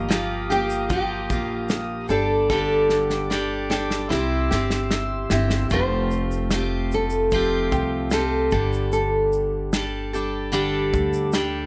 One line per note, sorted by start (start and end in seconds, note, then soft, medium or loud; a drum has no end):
0.00 1.26 G1 medium
0.00 0.10 G4 medium
0.00 4.06 G4 medium
0.00 0.52 A#4 loud
0.00 2.07 F5 medium
0.00 2.07 A#5 medium
0.00 2.07 D#6 medium
0.09 0.49 F3 medium
0.09 0.49 A#3 medium
0.09 0.49 F4 medium
0.09 0.49 G4 medium
0.09 snare loud
0.09 shaker medium
0.50 0.88 F3 soft
0.50 0.90 A#3 medium
0.50 0.90 F4 medium
0.50 0.90 G4 medium
0.50 shaker medium
0.70 shaker medium
0.89 1.30 F3 medium
0.89 1.31 A#3 medium
0.89 1.31 F4 medium
0.89 1.29 G4 medium
0.89 kick loud
0.89 shaker medium
1.30 2.06 A#1 medium
1.30 2.11 A#3 soft
1.30 2.10 F4 soft
1.30 2.08 G4 medium
1.30 kick medium
1.30 shaker medium
1.34 2.11 F3 soft
1.69 snare loud
1.69 shaker medium
2.09 4.10 G1 medium
2.09 2.51 G3 medium
2.09 2.50 D4 soft
2.09 2.50 G4 medium
2.09 2.50 A4 medium
2.09 4.09 D5 medium
2.09 4.09 A5 medium
2.09 4.09 D6 medium
2.09 shaker medium
2.50 3.31 G2 medium
2.50 3.31 D3 medium
2.50 3.30 G3 medium
2.50 3.29 D4 medium
2.50 3.31 G4 medium
2.50 3.31 A4 medium
2.50 kick loud
2.50 snare medium
2.90 snare medium
3.10 snare medium
3.30 3.70 G3 medium
3.30 3.71 D4 medium
3.30 3.70 G4 medium
3.30 3.69 A4 medium
3.30 snare medium
3.71 4.08 G3 soft
3.71 4.10 D4 soft
3.71 4.11 G4 medium
3.71 4.11 A4 medium
3.71 snare medium
3.91 snare medium
4.07 4.47 C2 loud
4.07 4.50 G3 medium
4.07 4.51 C4 medium
4.07 4.51 E4 medium
4.07 5.68 G4 medium
4.07 5.68 E5 medium
4.07 5.68 C6 medium
4.07 5.68 E6 medium
4.07 snare medium
4.12 4.49 G4 medium
4.51 5.27 G1 medium
4.51 5.34 C4 soft
4.51 5.32 E4 soft
4.51 5.31 G4 soft
4.51 snare medium
4.70 snare medium
4.91 snare loud
5.30 5.68 G1 loud
5.30 5.72 E4 medium
5.30 5.71 G4 medium
5.30 snare loud
5.34 5.71 C4 medium
5.50 snare medium
5.70 7.68 F1 medium
5.70 6.52 F3 medium
5.70 6.51 A3 medium
5.70 6.51 C4 medium
5.70 6.52 F4 medium
5.70 6.54 G4 medium
5.70 6.94 C5 loud
5.70 kick medium
5.70 shaker medium
6.11 shaker soft
6.31 shaker medium
6.51 7.32 A3 medium
6.51 7.32 C4 medium
6.51 7.33 F4 medium
6.51 7.34 G4 medium
6.51 snare loud
6.51 shaker medium
6.92 7.69 A4 medium
6.92 shaker medium
7.10 shaker medium
7.31 8.12 F3 medium
7.31 8.11 A3 medium
7.31 8.10 C4 medium
7.31 8.11 F4 medium
7.31 8.13 G4 medium
7.31 kick loud
7.31 shaker medium
7.72 8.48 C2 medium
7.72 8.09 G4 medium
7.72 kick medium
7.72 shaker soft
8.11 8.52 A3 medium
8.11 8.52 C4 medium
8.11 8.52 F4 medium
8.11 8.52 G4 medium
8.11 8.92 A4 medium
8.11 snare loud
8.11 shaker medium
8.51 10.90 G1 medium
8.51 9.74 G2 soft
8.51 9.74 D3 medium
8.51 9.73 G3 medium
8.51 9.74 D4 medium
8.51 9.75 G4 medium
8.51 9.73 A4 medium
8.51 kick loud
8.51 shaker medium
8.73 shaker soft
8.93 11.30 A4 medium
8.93 shaker medium
9.33 shaker soft
9.73 10.13 G3 medium
9.73 10.14 D4 medium
9.73 10.13 G4 medium
9.73 10.12 A4 medium
9.73 snare loud
9.73 shaker medium
10.13 10.52 G3 soft
10.13 10.52 D4 soft
10.13 10.53 G4 soft
10.13 10.53 A4 medium
10.13 shaker medium
10.52 11.33 G2 medium
10.52 11.33 D3 medium
10.52 11.33 G3 medium
10.52 11.33 D4 loud
10.52 11.34 G4 medium
10.52 11.34 A4 loud
10.52 shaker medium
10.94 11.66 D2 medium
10.94 kick medium
10.94 shaker soft
11.13 shaker medium
11.33 11.66 G3 medium
11.33 11.66 D4 medium
11.33 11.66 G4 medium
11.33 11.66 A4 medium
11.33 snare loud
11.33 shaker medium